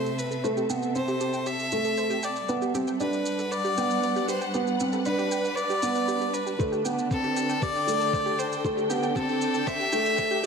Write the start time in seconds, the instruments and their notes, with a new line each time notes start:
Already playing: string section C3 C4 A4 E5, violin C5
0.06 shaker
0.19 violin B4, shaker
0.31 synth arpeggio sound A4, shaker
0.44 felt piano A3, synth arpeggio sound C5, shaker
0.57 synth arpeggio sound G4, shaker
0.70 felt piano B3, synth arpeggio sound G5, shaker
0.83 shaker
0.95 felt piano C4, synth arpeggio sound C5, violin C5, shaker
1.08 synth arpeggio sound G4, shaker
1.21 synth arpeggio sound G4, shaker
1.33 synth arpeggio sound G5, shaker
1.46 synth arpeggio sound G4, violin E5, shaker
1.59 shaker
1.72 felt piano A3, shaker
1.85 synth arpeggio sound A4, shaker
1.97 synth arpeggio sound C5, shaker
2.10 synth arpeggio sound G4, shaker
2.23 violin D5, synth arpeggio sound G5, shaker
2.36 shaker
2.49 string section G3, felt piano B3, synth arpeggio sound B4, shaker
2.62 synth arpeggio sound G4, shaker
2.74 felt piano C4, synth arpeggio sound G4, shaker
2.87 synth arpeggio sound G5, shaker
2.95 string section D4 F#5
3.00 felt piano D4, synth arpeggio sound G4, violin B4, shaker
3.13 shaker
3.26 shaker
3.39 synth arpeggio sound A4, shaker
3.47 string section B4
3.51 synth arpeggio sound B4, violin D5, shaker
3.65 synth arpeggio sound G4, shaker
3.77 felt piano B3, synth arpeggio sound G5, shaker
3.90 shaker
4.03 synth arpeggio sound B4, shaker
4.16 synth arpeggio sound G4, shaker
4.29 synth arpeggio sound G4, violin C5, shaker
4.41 synth arpeggio sound G5, shaker
4.54 felt piano B3, synth arpeggio sound G4, shaker
4.67 shaker
4.80 felt piano C4, shaker
4.93 synth arpeggio sound A4, shaker
5.05 felt piano D4, violin B4, synth arpeggio sound B4, shaker
5.19 synth arpeggio sound G4, shaker
5.32 synth arpeggio sound G5, shaker
5.45 shaker
5.55 synth arpeggio sound B4, violin D5, shaker
5.70 synth arpeggio sound G4, shaker
5.82 felt piano B3, synth arpeggio sound G5, shaker
5.95 synth arpeggio sound D4, shaker
6.08 synth arpeggio sound G4, shaker
6.21 synth arpeggio sound G4, shaker
6.34 violin B4, shaker
6.47 synth arpeggio sound G4, shaker
6.59 string section D3, felt piano A3, synth arpeggio sound C5, kick, shaker
6.72 synth arpeggio sound G4, shaker
6.85 felt piano B3, synth arpeggio sound G5, shaker
6.93 string section A4
6.99 shaker
7.11 felt piano C4, violin A4, synth arpeggio sound C5, kick, shaker
7.24 synth arpeggio sound G4, shaker
7.37 synth arpeggio sound G4, shaker
7.49 synth arpeggio sound G5, shaker
7.62 synth arpeggio sound G4, violin D5, kick, shaker
7.75 string section G5, shaker
7.87 felt piano A3, shaker
8.00 synth arpeggio sound A4, shaker
8.13 synth arpeggio sound C5, kick, shaker
8.26 synth arpeggio sound G4, shaker
8.39 violin C5, synth arpeggio sound G5, shaker
8.52 shaker
8.64 felt piano A3, synth arpeggio sound C5, kick, shaker
8.77 synth arpeggio sound G4, shaker
8.90 felt piano B3, synth arpeggio sound G4, shaker
9.03 synth arpeggio sound G5, shaker
9.16 felt piano C4, synth arpeggio sound G4, violin A4, kick, shaker
9.29 shaker
9.41 shaker
9.54 synth arpeggio sound A4, shaker
9.67 synth arpeggio sound C5, violin E5, kick, shaker
9.80 synth arpeggio sound G4, shaker
9.92 felt piano A3, synth arpeggio sound G5, shaker
10.05 shaker
10.18 synth arpeggio sound C5, kick, shaker
10.31 synth arpeggio sound G4, shaker